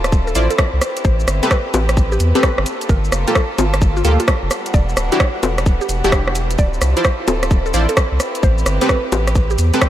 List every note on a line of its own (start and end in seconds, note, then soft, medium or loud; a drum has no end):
0.00 0.34 D1 medium
0.00 2.63 C4 medium
0.00 2.63 E4 medium
0.00 0.80 F4 medium
0.00 0.12 A4 medium
0.00 0.80 A4 medium
0.04 cross-stick medium
0.04 closed hi-hat medium
0.04 shaker soft
0.12 kick loud
0.12 shaker soft
0.27 0.40 A4 medium
0.27 shaker soft
0.35 0.49 A1 loud
0.35 0.48 E4 medium
0.35 0.48 F4 medium
0.35 0.48 C5 medium
0.35 0.48 D5 loud
0.35 open hi-hat loud
0.35 shaker medium
0.51 0.63 A4 medium
0.51 closed hi-hat medium
0.51 shaker soft
0.58 kick loud
0.58 cross-stick loud
0.58 closed hi-hat medium
0.58 shaker soft
0.74 0.81 C2 medium
0.82 2.64 G4 medium
0.82 2.64 B4 medium
0.82 cross-stick medium
0.82 open hi-hat loud
0.82 shaker medium
0.97 closed hi-hat medium
0.97 shaker soft
1.05 1.26 A1 loud
1.05 1.36 C5 loud
1.05 kick loud
1.05 shaker soft
1.20 shaker soft
1.28 1.41 G1 medium
1.28 cross-stick medium
1.28 open hi-hat loud
1.28 shaker medium
1.43 1.56 C4 loud
1.43 1.56 G4 medium
1.43 1.56 A4 medium
1.43 1.56 B4 loud
1.43 closed hi-hat medium
1.43 shaker soft
1.51 1.68 B4 medium
1.51 kick loud
1.51 cross-stick loud
1.51 shaker soft
1.74 2.18 A1 medium
1.74 1.96 G4 medium
1.74 open hi-hat loud
1.74 high bongo medium
1.74 shaker medium
1.89 cross-stick medium
1.89 closed hi-hat medium
1.89 shaker soft
1.97 kick loud
1.97 shaker soft
2.12 2.24 G4 medium
2.12 shaker soft
2.20 2.33 E2 loud
2.20 open hi-hat loud
2.20 shaker medium
2.35 2.65 C4 loud
2.35 2.47 G4 medium
2.35 2.65 G4 medium
2.35 2.65 A4 medium
2.35 2.65 B4 loud
2.35 closed hi-hat medium
2.35 shaker soft
2.43 kick loud
2.43 cross-stick loud
2.43 closed hi-hat medium
2.43 shaker soft
2.58 2.65 G1 medium
2.58 cross-stick medium
2.66 4.49 A#3 medium
2.66 6.55 D4 medium
2.66 4.49 F4 medium
2.66 4.49 A4 medium
2.66 open hi-hat loud
2.66 shaker medium
2.81 closed hi-hat medium
2.81 shaker soft
2.89 3.10 G1 loud
2.89 3.21 A#4 loud
2.89 kick loud
2.89 shaker soft
3.04 shaker soft
3.12 3.25 F1 medium
3.12 cross-stick medium
3.12 open hi-hat loud
3.12 shaker medium
3.28 3.34 A#3 medium
3.28 3.34 F4 medium
3.28 3.34 G4 medium
3.28 3.34 A4 medium
3.28 closed hi-hat medium
3.28 shaker soft
3.35 3.53 A4 medium
3.35 kick loud
3.35 cross-stick loud
3.35 shaker soft
3.58 4.03 G1 medium
3.58 3.81 F4 medium
3.58 open hi-hat loud
3.58 high bongo medium
3.58 shaker medium
3.74 cross-stick medium
3.74 closed hi-hat medium
3.74 shaker soft
3.82 kick loud
3.82 shaker soft
3.97 4.09 F4 medium
3.97 shaker soft
4.05 4.18 D2 loud
4.05 4.17 A#3 medium
4.05 4.17 F4 medium
4.05 4.17 G4 medium
4.05 4.17 A4 loud
4.05 open hi-hat loud
4.05 shaker medium
4.20 4.32 F4 medium
4.20 closed hi-hat medium
4.20 shaker soft
4.28 kick loud
4.28 cross-stick loud
4.28 closed hi-hat medium
4.28 shaker soft
4.43 4.50 F1 medium
4.51 6.57 G3 medium
4.51 6.57 B3 medium
4.51 6.57 F#5 medium
4.51 cross-stick medium
4.51 open hi-hat loud
4.51 shaker medium
4.66 closed hi-hat medium
4.66 shaker soft
4.74 4.95 E1 loud
4.74 5.05 D5 loud
4.74 kick loud
4.74 shaker soft
4.89 shaker soft
4.97 5.10 D1 medium
4.97 cross-stick medium
4.97 open hi-hat loud
4.97 shaker medium
5.12 5.25 D4 loud
5.12 5.25 E4 medium
5.12 5.25 F#4 medium
5.12 5.25 G4 loud
5.12 closed hi-hat medium
5.12 shaker soft
5.20 5.37 C#5 medium
5.20 kick loud
5.20 cross-stick loud
5.20 shaker soft
5.43 5.68 E1 medium
5.43 5.65 A4 medium
5.43 open hi-hat loud
5.43 high bongo medium
5.43 shaker medium
5.58 cross-stick medium
5.58 closed hi-hat medium
5.58 shaker soft
5.66 5.79 D1 medium
5.66 kick loud
5.66 shaker soft
5.81 5.93 G4 medium
5.81 shaker soft
5.89 6.02 E1 medium
5.89 open hi-hat loud
5.89 shaker medium
6.04 6.57 E1 medium
6.04 6.58 D4 loud
6.04 6.58 E4 medium
6.04 6.58 F#4 medium
6.04 6.17 G4 medium
6.04 6.58 G4 loud
6.04 closed hi-hat medium
6.04 shaker soft
6.12 kick loud
6.12 cross-stick loud
6.12 closed hi-hat medium
6.12 shaker soft
6.28 cross-stick medium
6.35 open hi-hat loud
6.35 shaker medium
6.51 closed hi-hat medium
6.51 shaker soft
6.58 6.80 D1 loud
6.58 9.89 C4 medium
6.58 9.89 E4 medium
6.58 8.18 F4 medium
6.58 8.18 A4 medium
6.58 6.90 D5 loud
6.58 kick loud
6.58 shaker soft
6.74 shaker soft
6.82 6.95 C2 medium
6.82 cross-stick medium
6.82 open hi-hat loud
6.82 shaker medium
6.97 7.03 E4 medium
6.97 7.03 F4 medium
6.97 7.03 C5 medium
6.97 7.03 D5 medium
6.97 closed hi-hat medium
6.97 shaker soft
7.05 7.22 C5 medium
7.05 kick loud
7.05 cross-stick loud
7.05 shaker soft
7.27 7.72 D1 medium
7.27 7.50 A4 medium
7.27 open hi-hat loud
7.27 high bongo medium
7.27 shaker medium
7.43 cross-stick medium
7.43 closed hi-hat medium
7.43 shaker soft
7.51 kick loud
7.51 shaker soft
7.66 7.78 A4 medium
7.66 shaker soft
7.74 7.87 A1 loud
7.74 7.87 E4 medium
7.74 7.87 F4 medium
7.74 7.87 C5 medium
7.74 7.87 D5 loud
7.74 open hi-hat loud
7.74 shaker medium
7.89 8.01 A4 medium
7.89 closed hi-hat medium
7.89 shaker soft
7.97 kick loud
7.97 cross-stick loud
7.97 closed hi-hat medium
7.97 shaker soft
8.12 8.19 C2 medium
8.20 9.89 G4 medium
8.20 9.89 B4 medium
8.20 cross-stick medium
8.20 open hi-hat loud
8.20 shaker medium
8.35 closed hi-hat medium
8.35 shaker soft
8.43 8.64 A1 loud
8.43 8.75 C5 loud
8.43 kick loud
8.43 shaker soft
8.58 shaker soft
8.66 8.79 G1 medium
8.66 cross-stick medium
8.66 open hi-hat loud
8.66 shaker medium
8.81 8.95 C4 loud
8.81 8.95 G4 medium
8.81 8.95 A4 medium
8.81 8.95 B4 loud
8.81 closed hi-hat medium
8.81 shaker soft
8.89 9.07 B4 medium
8.89 kick loud
8.89 cross-stick loud
8.89 shaker soft
9.12 9.57 A1 medium
9.12 9.35 G4 medium
9.12 open hi-hat loud
9.12 high bongo medium
9.12 shaker medium
9.27 cross-stick medium
9.27 closed hi-hat medium
9.27 shaker soft
9.35 kick loud
9.35 shaker soft
9.50 9.63 G4 medium
9.50 shaker soft
9.58 9.72 E2 loud
9.58 open hi-hat loud
9.58 shaker medium
9.74 9.89 C4 loud
9.74 9.89 G4 medium
9.74 9.86 G4 medium
9.74 9.89 A4 medium
9.74 9.89 B4 loud
9.74 closed hi-hat medium
9.74 shaker soft
9.82 kick loud
9.82 cross-stick loud
9.82 closed hi-hat medium
9.82 shaker soft